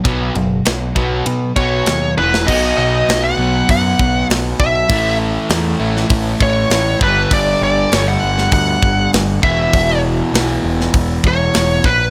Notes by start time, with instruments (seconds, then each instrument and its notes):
0.04 picked electric bass B1, overdriven electric guitar B2 F#3 B3, kick, ride
0.35 picked electric bass F#1, overdriven electric guitar B2 F#3, ride
0.66 picked electric bass B1, overdriven electric guitar B2 F#3, snare, ride
0.95 picked electric bass B1, overdriven electric guitar B2 F#3 B3, kick, ride
1.26 overdriven electric guitar B2 F#3, picked electric bass B2, ride
1.56 picked electric bass B1, overdriven electric guitar B2 F#3 B3, lead electric guitar C#5, kick, ride
1.86 picked electric bass D#2, overdriven electric guitar B2 F#3, snare, ride
2.17 picked electric bass E1, overdriven electric guitar E2 B2 E3, lead electric guitar B4, high tom
2.34 snare
2.47 picked electric bass B1, overdriven electric guitar B2 F#3 B3, lead electric guitar D#5, kick, crash
2.78 picked electric bass B1, lead electric guitar D#5
3.09 picked electric bass B1, snare, open hi-hat
3.24 lead electric guitar F#5
3.37 picked electric bass B1, overdriven electric guitar B2 F#3 B3
3.69 picked electric bass F#2, lead electric guitar F#5, kick, open hi-hat
3.99 picked electric bass B1, kick
4.30 picked electric bass B1, snare, open hi-hat
4.60 picked electric bass B1, lead electric guitar E5, kick
4.89 picked electric bass A1, overdriven electric guitar A2 E3 A3, kick, open hi-hat
5.50 picked electric bass E2, snare, open hi-hat
5.79 picked electric bass A1, overdriven electric guitar A2 E3 A3
5.97 snare
6.09 picked electric bass A1, kick, open hi-hat
6.40 picked electric bass A1, lead electric guitar C#5, kick
6.70 picked electric bass A1, snare, open hi-hat
7.00 picked electric bass G1, overdriven electric guitar G2 D3 G3, lead electric guitar B4, kick
7.31 picked electric bass G1, lead electric guitar D5, kick, open hi-hat
7.61 picked electric bass G1, lead electric guitar D5
7.90 picked electric bass G1, overdriven electric guitar G2 D3 G3, snare, open hi-hat
7.95 lead electric guitar C#5
8.08 lead electric guitar F#5
8.23 picked electric bass G1
8.38 snare
8.52 picked electric bass D2, lead electric guitar F#5, kick, open hi-hat
8.82 picked electric bass G1, kick
9.13 picked electric bass G1, snare, open hi-hat
9.42 picked electric bass E1, overdriven electric guitar E2 B2 E3, lead electric guitar E5, kick
9.73 picked electric bass E1, kick, open hi-hat
10.32 picked electric bass B1, overdriven electric guitar E2 B2 E3, snare, open hi-hat
10.64 picked electric bass E1
10.81 snare
10.94 picked electric bass E1, kick, open hi-hat
11.24 picked electric bass E1, lead electric guitar C#5, kick
11.54 picked electric bass E1, snare, open hi-hat
11.84 picked electric bass A#1, lead electric guitar B4, kick